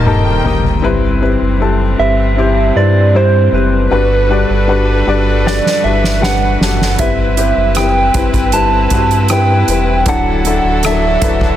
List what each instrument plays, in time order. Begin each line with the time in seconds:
Already playing: sub bass D#1, string section D#3 G3 A#3, felt piano A#3 D#4 G4 A#4 C5 D#5
0.06 felt piano A#3 D#4 G4 A4, violin section G5, mid tom
0.44 sub bass F1, felt piano A#3 D#4 G4 D#5, floor tom
0.64 floor tom
0.82 sub bass G1, string section C3 E3 C4, felt piano G3 C4 E4 B4
1.21 felt piano G3 C4 E4 B4
1.42 sub bass F#1
1.60 felt piano G3 C4 E4 A4
1.98 sub bass G1, felt piano G3 C4 E4 B4, soft synth lead E5
2.37 felt piano G3 C4 E4 G4
2.76 sub bass G2, felt piano G3 C4 E4 B4, soft synth lead D5
3.14 felt piano G3 C4 E4 C5, soft synth lead C5
3.52 sub bass F#1, felt piano G3 C4 E4 B4, soft synth lead B4
3.91 sub bass G1, felt piano G2 G3 D4 F#4 B4, string section G3 D4 F#4 A4 B4
4.29 felt piano G3 D4 F#4 D5
4.50 sub bass G1
4.68 felt piano G3 D4 F#4 B4
5.07 sub bass G1, felt piano G3 D4 F#4 D5
5.46 felt piano G3 D4 F#4 D5, soft synth lead D5, snare
5.66 snare
5.84 sub bass G1, felt piano G3 D4 F#4 B4, soft synth lead E5
6.04 snare
6.21 felt piano G3 D4 F#4 B4, soft synth lead F#5, snare
6.61 sub bass F#1, felt piano G3 D4 F#4 A4, snare
6.81 snare
6.99 sub bass G1, felt piano G3 C4 E4 B4, string section C4 E4 B4, soft synth lead E5, kick, closed hi-hat
7.37 felt piano G3 C4 E4 G4, closed hi-hat
7.57 sub bass F#1
7.75 felt piano G3 C4 E4 B4, soft synth lead G5, cross-stick, closed hi-hat
8.14 sub bass G1, felt piano G3 C4 E4 B4, kick, closed hi-hat
8.34 kick, closed hi-hat
8.52 felt piano G3 C4 E4 B4, soft synth lead A5, closed hi-hat
8.90 sub bass G2, felt piano G3 C4 E4 F#4, kick, closed hi-hat
9.11 closed hi-hat
9.28 felt piano G3 C4 E4 B4, soft synth lead G5, cross-stick, closed hi-hat
9.68 sub bass E1, felt piano G3 C4 E4 B4, closed hi-hat
10.05 sub bass D1, string section D3 D4 F#4 A4, felt piano D3 F#3 D4 E4 A4, soft synth lead F#5, kick, closed hi-hat
10.45 felt piano F#3 D4 E4 A4, closed hi-hat
10.63 sub bass D1
10.83 felt piano F#3 D4 E4 A4, soft synth lead E5, cross-stick, closed hi-hat
11.21 sub bass D1, felt piano F#3 D4 E4 B4, kick, closed hi-hat
11.41 kick